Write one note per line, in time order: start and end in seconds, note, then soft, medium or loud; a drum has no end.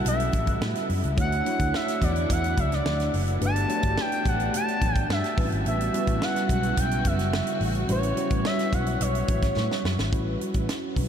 0.00 1.13 C#3 medium
0.00 1.13 G3 medium
0.00 1.20 G3 medium
0.00 1.14 B3 medium
0.00 1.20 C#4 medium
0.00 1.14 E4 medium
0.00 1.17 E4 medium
0.00 1.17 F#4 medium
0.00 1.19 G4 medium
0.00 0.26 A4 medium
0.00 1.19 B4 medium
0.05 0.29 B1 medium
0.05 0.87 E5 medium
0.05 closed hi-hat loud
0.05 muted conga soft
0.05 low conga medium
0.20 closed hi-hat medium
0.20 muted conga soft
0.32 0.57 A1 medium
0.32 kick medium
0.32 closed hi-hat medium
0.32 high conga medium
0.47 kick medium
0.47 closed hi-hat soft
0.61 0.73 A2 medium
0.61 snare loud
0.61 high conga medium
0.75 snare soft
0.75 closed hi-hat medium
0.89 1.01 F#2 medium
0.89 open hi-hat medium
1.04 1.15 C#2 medium
1.04 closed hi-hat soft
1.16 1.41 D2 loud
1.16 3.39 D3 medium
1.16 5.33 E3 medium
1.16 1.42 A3 medium
1.16 1.42 D4 medium
1.16 3.39 D4 medium
1.16 3.39 E4 medium
1.16 1.43 E4 medium
1.16 1.43 F#4 medium
1.16 1.43 C#5 medium
1.16 1.77 F#5 loud
1.16 kick loud
1.16 closed hi-hat medium
1.16 muted conga soft
1.16 low conga medium
1.32 closed hi-hat medium
1.32 muted conga soft
1.45 2.46 A3 medium
1.45 2.46 D4 medium
1.45 2.46 E4 medium
1.45 2.47 F#4 medium
1.45 2.47 C#5 medium
1.45 closed hi-hat medium
1.45 high conga soft
1.59 1.71 D2 loud
1.59 kick medium
1.59 closed hi-hat medium
1.74 2.05 E5 loud
1.74 snare medium
1.74 muted conga soft
1.88 snare soft
1.88 closed hi-hat medium
1.88 muted conga soft
2.02 2.25 E2 medium
2.02 2.31 D5 medium
2.02 kick medium
2.02 closed hi-hat medium
2.02 high conga medium
2.02 low conga medium
2.16 closed hi-hat soft
2.30 2.53 E2 medium
2.30 2.61 F#5 loud
2.30 kick medium
2.30 closed hi-hat loud
2.30 muted conga soft
2.30 low conga medium
2.44 closed hi-hat soft
2.44 muted conga soft
2.57 2.81 C#2 loud
2.57 2.75 E5 medium
2.57 kick medium
2.57 closed hi-hat medium
2.57 high conga medium
2.72 3.15 D5 medium
2.72 snare soft
2.72 closed hi-hat soft
2.85 3.09 D2 loud
2.85 snare loud
2.85 high conga medium
3.00 snare soft
3.00 closed hi-hat soft
3.00 muted conga soft
3.14 3.37 F#1 medium
3.14 open hi-hat medium
3.28 closed hi-hat soft
3.41 3.64 G1 medium
3.41 5.36 G3 medium
3.41 3.66 A3 medium
3.41 5.36 A3 medium
3.41 10.09 B3 medium
3.41 3.67 D4 medium
3.41 3.66 F#4 medium
3.41 3.67 G4 medium
3.41 3.67 B4 medium
3.41 closed hi-hat medium
3.41 muted conga soft
3.41 low conga medium
3.45 4.02 A5 loud
3.56 closed hi-hat medium
3.56 muted conga soft
3.68 4.69 A3 medium
3.68 4.70 D4 medium
3.68 4.70 F#4 medium
3.68 4.70 G4 medium
3.68 3.76 C#5 medium
3.68 closed hi-hat medium
3.68 high conga soft
3.76 4.73 D5 medium
3.83 3.95 G1 loud
3.83 kick medium
3.83 closed hi-hat medium
3.98 4.30 G5 loud
3.98 snare loud
3.98 muted conga soft
4.12 closed hi-hat medium
4.12 muted conga soft
4.25 4.49 A1 medium
4.25 4.55 F#5 loud
4.25 kick medium
4.25 closed hi-hat medium
4.25 high conga medium
4.25 low conga medium
4.40 closed hi-hat soft
4.54 5.07 A5 loud
4.54 closed hi-hat loud
4.54 muted conga soft
4.54 low conga medium
4.68 closed hi-hat soft
4.81 5.05 A1 medium
4.81 kick medium
4.81 closed hi-hat medium
4.81 high conga medium
4.96 kick medium
4.96 closed hi-hat soft
5.09 5.21 G2 loud
5.09 5.50 E5 medium
5.09 snare loud
5.09 high conga medium
5.24 snare soft
5.24 closed hi-hat soft
5.24 muted conga soft
5.37 5.49 A1 medium
5.37 10.09 C#3 medium
5.37 5.87 G3 medium
5.37 10.09 G3 medium
5.37 5.44 C4 medium
5.37 5.88 E4 medium
5.37 5.88 F#4 medium
5.37 10.09 F#4 medium
5.37 5.88 B4 medium
5.37 kick loud
5.37 open hi-hat medium
5.44 5.91 C#4 medium
5.52 5.63 G#1 medium
5.52 closed hi-hat soft
5.65 5.88 A1 medium
5.65 6.25 E5 medium
5.65 closed hi-hat medium
5.65 muted conga soft
5.65 low conga medium
5.80 closed hi-hat medium
5.80 muted conga soft
5.93 6.94 G3 medium
5.93 6.94 C#4 medium
5.93 6.94 E4 medium
5.93 6.94 F#4 medium
5.93 6.94 B4 medium
5.93 closed hi-hat medium
5.93 high conga soft
6.07 6.19 A1 medium
6.07 kick medium
6.07 closed hi-hat medium
6.22 6.50 F#5 loud
6.22 snare loud
6.22 muted conga soft
6.36 snare soft
6.36 closed hi-hat medium
6.36 muted conga soft
6.49 6.72 B1 medium
6.49 6.81 F#5 medium
6.49 kick medium
6.49 closed hi-hat medium
6.49 high conga medium
6.49 low conga medium
6.63 closed hi-hat soft
6.77 7.00 B1 medium
6.77 7.08 G5 loud
6.77 kick medium
6.77 closed hi-hat loud
6.77 low conga medium
6.91 closed hi-hat medium
6.91 muted conga soft
7.05 7.40 F#1 medium
7.05 7.62 E5 medium
7.05 kick medium
7.05 closed hi-hat medium
7.05 high conga medium
7.19 snare soft
7.19 closed hi-hat soft
7.33 snare loud
7.33 muted conga soft
7.33 high conga medium
7.47 closed hi-hat medium
7.60 7.84 A1 loud
7.60 open hi-hat medium
7.75 closed hi-hat soft
7.88 8.12 A1 medium
7.88 8.14 G3 medium
7.88 8.14 C#4 medium
7.88 8.14 E4 medium
7.88 8.14 F#4 medium
7.88 8.14 B4 medium
7.88 8.48 C#5 loud
7.88 closed hi-hat medium
7.88 muted conga soft
7.88 low conga medium
8.03 closed hi-hat medium
8.16 9.17 G3 medium
8.16 9.17 C#4 medium
8.16 9.17 E4 medium
8.16 9.17 F#4 medium
8.16 9.18 C#5 medium
8.16 closed hi-hat medium
8.16 high conga soft
8.30 8.42 A1 medium
8.30 kick medium
8.30 closed hi-hat medium
8.45 8.75 E5 loud
8.45 snare loud
8.59 snare soft
8.59 closed hi-hat medium
8.59 muted conga soft
8.73 8.96 B1 medium
8.73 9.03 F#5 loud
8.73 kick medium
8.73 closed hi-hat medium
8.73 high conga medium
8.73 low conga medium
8.86 closed hi-hat soft
9.00 9.24 B1 medium
9.00 9.85 C#5 medium
9.00 closed hi-hat loud
9.00 muted conga soft
9.00 low conga medium
9.15 closed hi-hat medium
9.15 muted conga soft
9.28 9.52 A1 medium
9.28 kick medium
9.28 closed hi-hat medium
9.28 high conga medium
9.42 kick medium
9.42 snare soft
9.42 closed hi-hat medium
9.56 9.68 A2 loud
9.56 snare medium
9.56 muted conga soft
9.56 high conga medium
9.71 snare medium
9.84 9.96 F#2 medium
9.84 snare medium
9.98 10.10 G#1 medium
9.98 snare medium
10.12 10.36 A1 medium
10.12 11.08 G3 medium
10.12 11.08 C#4 medium
10.12 11.08 E4 medium
10.12 11.08 F#4 medium
10.12 11.08 B4 medium
10.12 kick loud
10.12 closed hi-hat medium
10.12 muted conga soft
10.12 low conga medium
10.28 muted conga soft
10.41 closed hi-hat medium
10.41 high conga soft
10.54 10.66 A1 medium
10.54 kick medium
10.54 closed hi-hat soft
10.69 snare loud
10.69 closed hi-hat medium
10.69 muted conga soft
10.84 muted conga soft
10.96 11.08 B1 medium
10.96 kick medium
10.96 open hi-hat medium
10.96 high conga medium